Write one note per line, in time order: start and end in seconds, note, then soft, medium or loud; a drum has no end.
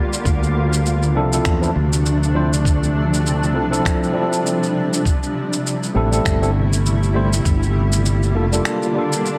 0.00 0.23 D3 medium
0.00 0.23 G3 medium
0.00 0.23 A#3 medium
0.00 0.24 F4 medium
0.13 shaker medium
0.25 1.16 D2 medium
0.25 5.02 C3 medium
0.25 5.02 F3 medium
0.25 2.64 A3 medium
0.25 5.02 D4 medium
0.25 kick loud
0.25 shaker soft
0.43 shaker soft
0.73 shaker medium
0.86 shaker medium
1.03 shaker soft
1.15 1.39 C2 medium
1.15 1.28 F3 medium
1.15 1.28 C4 medium
1.15 1.29 D4 medium
1.15 1.29 E4 medium
1.15 1.29 A4 medium
1.32 1.58 F3 medium
1.32 1.58 C4 medium
1.32 1.59 D4 medium
1.32 1.59 E4 medium
1.32 1.59 A4 medium
1.32 shaker medium
1.45 1.69 E2 medium
1.45 finger snap medium
1.45 kick loud
1.45 shaker soft
1.61 1.69 F3 medium
1.61 1.69 C4 medium
1.61 1.69 D4 medium
1.61 1.70 E4 medium
1.61 1.70 A4 medium
1.61 shaker soft
1.75 3.55 D2 medium
1.93 shaker medium
2.06 shaker soft
2.23 shaker soft
2.34 2.49 F3 medium
2.34 2.49 C4 medium
2.34 2.50 D4 medium
2.34 2.50 E4 medium
2.34 2.50 C5 medium
2.53 shaker medium
2.65 5.03 G3 medium
2.65 kick loud
2.65 shaker medium
2.83 shaker soft
3.14 shaker medium
3.26 shaker medium
3.43 shaker soft
3.54 3.79 C2 medium
3.54 3.64 F3 medium
3.54 3.64 C4 medium
3.54 3.64 D4 medium
3.54 3.65 E4 medium
3.54 3.65 A4 medium
3.70 4.11 F3 medium
3.70 4.12 C4 medium
3.70 4.12 D4 medium
3.70 4.12 E4 medium
3.70 4.12 A4 medium
3.70 shaker medium
3.85 finger snap medium
3.85 kick loud
3.85 shaker soft
4.03 shaker soft
4.12 5.03 F3 medium
4.12 5.03 C4 medium
4.12 5.04 D4 medium
4.12 5.04 E4 medium
4.17 5.05 A4 medium
4.33 shaker medium
4.46 shaker medium
4.63 shaker soft
4.93 shaker medium
5.05 7.43 C3 medium
5.05 9.38 G3 medium
5.05 7.43 A3 medium
5.05 7.44 E4 medium
5.05 kick medium
5.05 shaker soft
5.23 shaker soft
5.53 shaker medium
5.66 shaker soft
5.83 shaker soft
5.94 6.18 A1 medium
5.94 6.08 G3 medium
5.94 6.08 A3 medium
5.94 6.08 C4 medium
5.94 6.09 E4 medium
5.94 6.09 A4 medium
6.11 6.38 G3 medium
6.11 6.38 A3 medium
6.11 6.38 C4 medium
6.11 6.39 E4 medium
6.11 6.39 A4 medium
6.11 shaker medium
6.25 7.40 G1 medium
6.25 finger snap medium
6.25 kick loud
6.25 shaker soft
6.41 6.49 G3 medium
6.41 6.49 A3 medium
6.41 6.49 C4 medium
6.41 6.50 E4 medium
6.41 6.50 A4 medium
6.41 shaker soft
6.73 shaker medium
6.86 shaker soft
7.03 shaker soft
7.14 7.29 G3 medium
7.14 7.30 A3 medium
7.14 7.30 C4 medium
7.14 7.30 E4 medium
7.14 7.30 C5 medium
7.33 shaker medium
7.45 8.35 G1 medium
7.45 9.38 D3 medium
7.45 9.38 A#3 medium
7.45 9.38 F4 medium
7.45 kick loud
7.45 shaker soft
7.63 shaker soft
7.92 shaker medium
8.05 shaker medium
8.23 shaker soft
8.34 8.59 F1 medium
8.34 8.44 G3 medium
8.34 8.44 A#3 medium
8.34 8.45 D4 medium
8.34 8.45 F4 medium
8.34 8.45 A4 medium
8.52 8.92 G3 medium
8.52 8.92 A#3 medium
8.52 8.93 D4 medium
8.52 8.93 F4 medium
8.52 8.93 A4 medium
8.52 shaker medium
8.65 finger snap medium
8.65 swell medium
8.65 shaker soft
8.82 shaker soft
8.94 9.38 G3 medium
8.94 9.38 A#3 medium
8.94 9.38 D4 medium
8.94 9.38 F4 medium
8.98 9.38 A4 medium
9.12 shaker medium
9.26 shaker soft